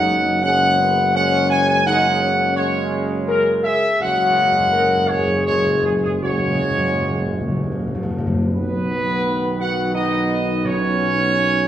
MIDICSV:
0, 0, Header, 1, 6, 480
1, 0, Start_track
1, 0, Tempo, 714286
1, 1250, Time_signature, 3, 2, 24, 8
1, 3175, Tempo, 752823
1, 5575, Tempo, 722892
1, 7692, End_track
2, 0, Start_track
2, 0, Title_t, "Trumpet section"
2, 0, Program_c, 0, 61
2, 0, Note_on_c, 0, 78, 121
2, 261, Note_off_c, 0, 78, 0
2, 287, Note_on_c, 0, 78, 126
2, 742, Note_off_c, 0, 78, 0
2, 769, Note_on_c, 0, 78, 127
2, 993, Note_off_c, 0, 78, 0
2, 1005, Note_on_c, 0, 80, 127
2, 1119, Note_off_c, 0, 80, 0
2, 1128, Note_on_c, 0, 80, 127
2, 1240, Note_off_c, 0, 80, 0
2, 1244, Note_on_c, 0, 78, 124
2, 1696, Note_off_c, 0, 78, 0
2, 1716, Note_on_c, 0, 73, 116
2, 2174, Note_off_c, 0, 73, 0
2, 2441, Note_on_c, 0, 76, 127
2, 2669, Note_off_c, 0, 76, 0
2, 2688, Note_on_c, 0, 78, 127
2, 3399, Note_on_c, 0, 73, 119
2, 3404, Note_off_c, 0, 78, 0
2, 3632, Note_off_c, 0, 73, 0
2, 3640, Note_on_c, 0, 73, 110
2, 3865, Note_off_c, 0, 73, 0
2, 3881, Note_on_c, 0, 68, 96
2, 3937, Note_off_c, 0, 68, 0
2, 4002, Note_on_c, 0, 68, 91
2, 4058, Note_off_c, 0, 68, 0
2, 4131, Note_on_c, 0, 73, 115
2, 5310, Note_off_c, 0, 73, 0
2, 5574, Note_on_c, 0, 71, 118
2, 6269, Note_off_c, 0, 71, 0
2, 6301, Note_on_c, 0, 78, 106
2, 6522, Note_off_c, 0, 78, 0
2, 6537, Note_on_c, 0, 75, 106
2, 6985, Note_off_c, 0, 75, 0
2, 7007, Note_on_c, 0, 73, 127
2, 7692, Note_off_c, 0, 73, 0
2, 7692, End_track
3, 0, Start_track
3, 0, Title_t, "French horn section"
3, 0, Program_c, 1, 60
3, 0, Note_on_c, 1, 63, 98
3, 264, Note_off_c, 1, 63, 0
3, 288, Note_on_c, 1, 61, 87
3, 513, Note_off_c, 1, 61, 0
3, 536, Note_on_c, 1, 59, 87
3, 774, Note_off_c, 1, 59, 0
3, 775, Note_on_c, 1, 61, 108
3, 1224, Note_off_c, 1, 61, 0
3, 1249, Note_on_c, 1, 63, 96
3, 1471, Note_off_c, 1, 63, 0
3, 1492, Note_on_c, 1, 61, 97
3, 2180, Note_off_c, 1, 61, 0
3, 2206, Note_on_c, 1, 70, 120
3, 2431, Note_off_c, 1, 70, 0
3, 2450, Note_on_c, 1, 68, 91
3, 2691, Note_off_c, 1, 68, 0
3, 2697, Note_on_c, 1, 66, 109
3, 3059, Note_off_c, 1, 66, 0
3, 3173, Note_on_c, 1, 70, 103
3, 3388, Note_off_c, 1, 70, 0
3, 3410, Note_on_c, 1, 68, 91
3, 4131, Note_on_c, 1, 66, 91
3, 4132, Note_off_c, 1, 68, 0
3, 5310, Note_off_c, 1, 66, 0
3, 5579, Note_on_c, 1, 59, 101
3, 6272, Note_off_c, 1, 59, 0
3, 6297, Note_on_c, 1, 66, 90
3, 6537, Note_off_c, 1, 66, 0
3, 6542, Note_on_c, 1, 63, 104
3, 6987, Note_off_c, 1, 63, 0
3, 7019, Note_on_c, 1, 61, 111
3, 7692, Note_off_c, 1, 61, 0
3, 7692, End_track
4, 0, Start_track
4, 0, Title_t, "Trombone section"
4, 0, Program_c, 2, 61
4, 0, Note_on_c, 2, 49, 88
4, 0, Note_on_c, 2, 56, 79
4, 265, Note_off_c, 2, 56, 0
4, 266, Note_off_c, 2, 49, 0
4, 297, Note_on_c, 2, 49, 86
4, 297, Note_on_c, 2, 56, 82
4, 747, Note_off_c, 2, 49, 0
4, 747, Note_off_c, 2, 56, 0
4, 771, Note_on_c, 2, 56, 90
4, 775, Note_on_c, 2, 49, 91
4, 1222, Note_off_c, 2, 56, 0
4, 1225, Note_off_c, 2, 49, 0
4, 1251, Note_on_c, 2, 49, 97
4, 1252, Note_on_c, 2, 56, 97
4, 1699, Note_off_c, 2, 49, 0
4, 1700, Note_off_c, 2, 56, 0
4, 1726, Note_on_c, 2, 56, 103
4, 1727, Note_on_c, 2, 49, 98
4, 2576, Note_off_c, 2, 49, 0
4, 2576, Note_off_c, 2, 56, 0
4, 2690, Note_on_c, 2, 56, 94
4, 2691, Note_on_c, 2, 49, 107
4, 3613, Note_off_c, 2, 56, 0
4, 3614, Note_off_c, 2, 49, 0
4, 3636, Note_on_c, 2, 56, 77
4, 3637, Note_on_c, 2, 49, 78
4, 4103, Note_off_c, 2, 49, 0
4, 4103, Note_off_c, 2, 56, 0
4, 4126, Note_on_c, 2, 49, 82
4, 4126, Note_on_c, 2, 56, 90
4, 5335, Note_off_c, 2, 56, 0
4, 5336, Note_off_c, 2, 49, 0
4, 5575, Note_on_c, 2, 59, 93
4, 5578, Note_on_c, 2, 51, 87
4, 6986, Note_off_c, 2, 51, 0
4, 7013, Note_on_c, 2, 54, 88
4, 7467, Note_off_c, 2, 59, 0
4, 7499, Note_on_c, 2, 58, 90
4, 7692, Note_off_c, 2, 54, 0
4, 7692, Note_off_c, 2, 58, 0
4, 7692, End_track
5, 0, Start_track
5, 0, Title_t, "Timpani"
5, 0, Program_c, 3, 47
5, 0, Note_on_c, 3, 42, 110
5, 503, Note_off_c, 3, 42, 0
5, 2687, Note_on_c, 3, 42, 42
5, 2727, Note_off_c, 3, 42, 0
5, 2735, Note_on_c, 3, 42, 43
5, 2779, Note_off_c, 3, 42, 0
5, 2787, Note_on_c, 3, 42, 45
5, 2830, Note_off_c, 3, 42, 0
5, 2838, Note_on_c, 3, 42, 40
5, 2878, Note_off_c, 3, 42, 0
5, 2886, Note_on_c, 3, 42, 45
5, 2930, Note_off_c, 3, 42, 0
5, 2938, Note_on_c, 3, 42, 40
5, 2980, Note_off_c, 3, 42, 0
5, 2988, Note_on_c, 3, 42, 41
5, 3031, Note_off_c, 3, 42, 0
5, 3039, Note_on_c, 3, 42, 44
5, 3081, Note_off_c, 3, 42, 0
5, 3089, Note_on_c, 3, 42, 52
5, 3131, Note_off_c, 3, 42, 0
5, 3139, Note_on_c, 3, 42, 48
5, 3181, Note_off_c, 3, 42, 0
5, 3188, Note_on_c, 3, 42, 44
5, 3228, Note_off_c, 3, 42, 0
5, 3236, Note_on_c, 3, 42, 50
5, 3276, Note_off_c, 3, 42, 0
5, 3284, Note_on_c, 3, 42, 46
5, 3325, Note_off_c, 3, 42, 0
5, 3333, Note_on_c, 3, 42, 46
5, 3373, Note_off_c, 3, 42, 0
5, 3381, Note_on_c, 3, 42, 52
5, 3424, Note_off_c, 3, 42, 0
5, 3432, Note_on_c, 3, 42, 55
5, 3469, Note_off_c, 3, 42, 0
5, 3477, Note_on_c, 3, 42, 58
5, 3518, Note_off_c, 3, 42, 0
5, 3526, Note_on_c, 3, 42, 55
5, 3566, Note_off_c, 3, 42, 0
5, 3574, Note_on_c, 3, 42, 55
5, 3616, Note_off_c, 3, 42, 0
5, 3624, Note_on_c, 3, 42, 54
5, 3666, Note_off_c, 3, 42, 0
5, 3673, Note_on_c, 3, 42, 54
5, 3716, Note_off_c, 3, 42, 0
5, 3724, Note_on_c, 3, 42, 57
5, 3765, Note_off_c, 3, 42, 0
5, 3772, Note_on_c, 3, 42, 71
5, 3816, Note_off_c, 3, 42, 0
5, 3824, Note_on_c, 3, 42, 65
5, 3869, Note_off_c, 3, 42, 0
5, 3876, Note_on_c, 3, 42, 70
5, 3919, Note_off_c, 3, 42, 0
5, 3927, Note_on_c, 3, 42, 59
5, 3970, Note_off_c, 3, 42, 0
5, 3978, Note_on_c, 3, 42, 63
5, 4021, Note_off_c, 3, 42, 0
5, 4029, Note_on_c, 3, 42, 63
5, 4074, Note_off_c, 3, 42, 0
5, 4082, Note_on_c, 3, 42, 62
5, 4127, Note_off_c, 3, 42, 0
5, 4183, Note_on_c, 3, 42, 74
5, 4230, Note_off_c, 3, 42, 0
5, 4237, Note_on_c, 3, 42, 69
5, 4280, Note_off_c, 3, 42, 0
5, 4287, Note_on_c, 3, 42, 75
5, 4330, Note_off_c, 3, 42, 0
5, 4337, Note_on_c, 3, 42, 76
5, 4378, Note_off_c, 3, 42, 0
5, 4385, Note_on_c, 3, 42, 67
5, 4430, Note_off_c, 3, 42, 0
5, 4438, Note_on_c, 3, 42, 76
5, 4480, Note_off_c, 3, 42, 0
5, 4488, Note_on_c, 3, 42, 74
5, 4534, Note_off_c, 3, 42, 0
5, 4541, Note_on_c, 3, 42, 82
5, 4583, Note_off_c, 3, 42, 0
5, 4591, Note_on_c, 3, 42, 77
5, 4630, Note_off_c, 3, 42, 0
5, 4638, Note_on_c, 3, 42, 82
5, 4679, Note_off_c, 3, 42, 0
5, 4687, Note_on_c, 3, 42, 79
5, 4729, Note_off_c, 3, 42, 0
5, 4737, Note_on_c, 3, 42, 87
5, 4780, Note_off_c, 3, 42, 0
5, 4787, Note_on_c, 3, 42, 90
5, 4828, Note_off_c, 3, 42, 0
5, 4836, Note_on_c, 3, 42, 82
5, 4878, Note_off_c, 3, 42, 0
5, 4886, Note_on_c, 3, 42, 91
5, 4928, Note_off_c, 3, 42, 0
5, 4935, Note_on_c, 3, 42, 96
5, 4978, Note_off_c, 3, 42, 0
5, 4986, Note_on_c, 3, 42, 91
5, 5026, Note_off_c, 3, 42, 0
5, 5033, Note_on_c, 3, 42, 99
5, 5076, Note_off_c, 3, 42, 0
5, 5084, Note_on_c, 3, 42, 102
5, 5125, Note_off_c, 3, 42, 0
5, 5133, Note_on_c, 3, 42, 91
5, 5175, Note_off_c, 3, 42, 0
5, 5182, Note_on_c, 3, 42, 101
5, 5223, Note_off_c, 3, 42, 0
5, 5231, Note_on_c, 3, 42, 110
5, 5276, Note_off_c, 3, 42, 0
5, 5283, Note_on_c, 3, 42, 116
5, 5324, Note_off_c, 3, 42, 0
5, 5332, Note_on_c, 3, 42, 105
5, 5374, Note_off_c, 3, 42, 0
5, 5381, Note_on_c, 3, 42, 114
5, 5426, Note_off_c, 3, 42, 0
5, 5434, Note_on_c, 3, 42, 112
5, 5474, Note_off_c, 3, 42, 0
5, 5482, Note_on_c, 3, 42, 95
5, 5529, Note_off_c, 3, 42, 0
5, 7010, Note_on_c, 3, 47, 108
5, 7692, Note_off_c, 3, 47, 0
5, 7692, End_track
6, 0, Start_track
6, 0, Title_t, "Tuba"
6, 0, Program_c, 4, 58
6, 0, Note_on_c, 4, 30, 91
6, 2476, Note_off_c, 4, 30, 0
6, 2690, Note_on_c, 4, 30, 91
6, 5337, Note_off_c, 4, 30, 0
6, 5572, Note_on_c, 4, 35, 83
6, 7692, Note_off_c, 4, 35, 0
6, 7692, End_track
0, 0, End_of_file